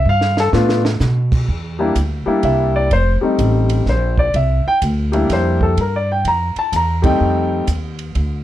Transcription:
0.05 G2
0.09 F5
0.21 snare
0.37 A4, snare
0.53 A2 A3 B3 D4 F4, snare
0.69 snare
0.85 snare
1.00 B2, snare, hi-hat pedal
1.32 kick, crash
1.48 E2, kick
1.79 G3 A#3 D4 E4
1.96 D2, kick, hi-hat pedal, ride
2.26 G3 A#3 D4 E4, muted upright bass stroke
2.43 C2 E5, kick, ride
2.76 D5
2.91 F1 C5, kick, ride
3.21 G3 A3 C4 D#4
3.39 A1, kick, hi-hat pedal, ride
3.70 ride
3.86 A#1 C5, kick, snare
4.18 D5, kick
4.34 C2 E5, kick, ride
4.65 G5, muted upright bass stroke
4.82 D2, kick, hi-hat pedal, ride
5.12 G3 A#3 D4 E4, ride
5.29 F2 C5, kick, snare, ride
5.61 A4, kick
5.77 G2 A#4, kick, ride
5.96 D5
6.12 G5
6.25 F2 A#5, kick, ride
6.56 A5, muted upright bass stroke, ride
6.72 E2 A#5, kick, hi-hat pedal, ride
7.02 G3 A3 C4 D#4 G5, kick, ride
7.20 F2
7.67 D#2, kick, hi-hat pedal, ride
7.99 ride
8.15 D2, kick, ride

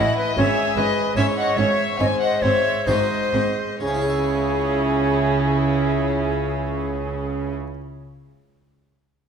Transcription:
Already playing: C#4 E4 D#5
0.00 A2 F#5
0.17 B4 D#5
0.36 G#1 G#2 C#4 G#4 C#5 E5
0.76 G#1 G#2 C#4 B4 D#5
1.16 G#1 G#2 C#4 E4 C#5 E5
1.37 D#5 F#5
1.57 G#1 G#2 C#4 C#5 E5
1.99 G#1 G#2 C4 C5 D#5 G#5
2.20 D#5 F#5
2.42 G#1 G#2 C4 C#5 E5
2.86 G#1 G#2 C4 D#4 F#4 C5 D#5
3.32 G#1 G#2 C4
3.80 C#2 C#3 C#4 E4 G#4 C#5
3.87 C#4
3.94 E4
4.01 G#4
4.08 E5

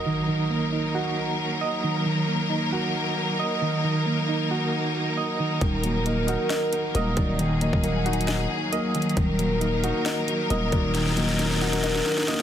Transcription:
Already playing: F#3 A#3 D#4 F#4 A#4 D#5, impact
0.06 D#3
0.28 D#3
0.50 A#3
0.72 D#4
0.95 F#4
1.61 D#5
1.84 D#3
2.06 D#3
2.28 A#3
2.50 D#4
2.72 F#4
3.39 D#5
3.62 D#3
3.84 D#3
4.06 A#3
4.28 D#4
4.51 F#4
5.17 D#5
5.40 D#3
5.61 D#1 D#3 F#3 A#4, kick, closed hi-hat
5.83 F#3 A#3, closed hi-hat
6.06 A#3 D#4, closed hi-hat
6.27 D#4 F#4, closed hi-hat
6.50 D#5, snare, closed hi-hat
6.73 D#4, closed hi-hat
6.95 D#1 A#3 D#5, closed hi-hat
7.16 D#1 D#3 F#3 D5, kick, closed hi-hat
7.39 D#3 G#4, closed hi-hat
7.61 F#3 A#3 D#5, closed hi-hat
7.73 D#1, kick
7.83 A#3 D#4 F#5, closed hi-hat
8.05 D#4 F#4, closed hi-hat
8.13 closed hi-hat
8.21 closed hi-hat
8.27 D#5, snare, closed hi-hat
8.50 D#4
8.72 A#3 D#5, closed hi-hat
8.94 D#3 F#3, closed hi-hat, open hi-hat
9.02 closed hi-hat
9.10 closed hi-hat
9.16 D#1 D#3 A#3 D#4 A#4, kick, closed hi-hat
9.39 F#3 A#3, closed hi-hat
9.61 A#3 D#4, closed hi-hat
9.84 D#4 F#4, closed hi-hat
10.05 D#5, snare, closed hi-hat
10.27 D#4, closed hi-hat
10.50 D#1 A#3 D#5, closed hi-hat
10.72 D#1 D#3 F#3 D5, kick, closed hi-hat
10.95 D#3 D#4, snare, closed hi-hat
11.01 snare
11.06 snare
11.12 snare
11.16 F#3 A#3 D#5, snare, closed hi-hat
11.23 snare
11.29 snare, closed hi-hat
11.34 snare
11.39 A#3 D#4 A#4, snare, closed hi-hat
11.45 snare
11.51 snare
11.56 snare
11.61 D#4 F#4, snare, closed hi-hat
11.67 snare
11.73 snare, closed hi-hat
11.78 snare
11.83 D#5, snare, closed hi-hat
11.89 snare
11.95 snare
12.01 snare
12.06 D#4, snare
12.12 snare
12.18 snare
12.23 snare
12.28 A#3 D#5, snare, closed hi-hat
12.34 snare

